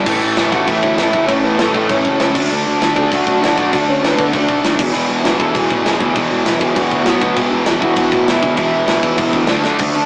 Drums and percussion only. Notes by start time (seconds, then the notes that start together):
0.06 kick, crash
0.37 snare, crash
0.52 kick
0.68 kick, crash
0.83 kick
0.98 snare, crash
1.13 kick
1.28 kick, crash
1.59 snare, crash
1.74 kick
1.89 kick, crash
2.05 kick
2.20 snare, crash
2.35 kick, crash
2.51 crash
2.81 snare, crash
2.96 kick
3.12 kick, crash
3.27 kick
3.43 snare, crash
3.58 kick
3.73 kick, crash
4.04 snare, crash
4.19 kick
4.33 kick, crash
4.48 kick
4.64 snare, crash
4.79 kick, crash
4.95 crash
5.25 snare, crash
5.40 kick
5.55 kick, crash
5.70 kick
5.86 snare, crash
6.00 kick
6.15 kick, crash
6.46 snare, crash
6.61 kick
6.76 kick, crash
6.91 kick
7.06 snare, crash
7.22 kick
7.36 kick, crash
7.66 snare, crash
7.82 kick
7.96 kick, crash
8.12 kick
8.28 snare, crash
8.43 kick
8.57 kick, crash
8.88 snare, crash
9.03 kick
9.17 kick, crash
9.33 kick
9.47 snare, crash
9.64 snare
9.79 kick, crash
9.95 crash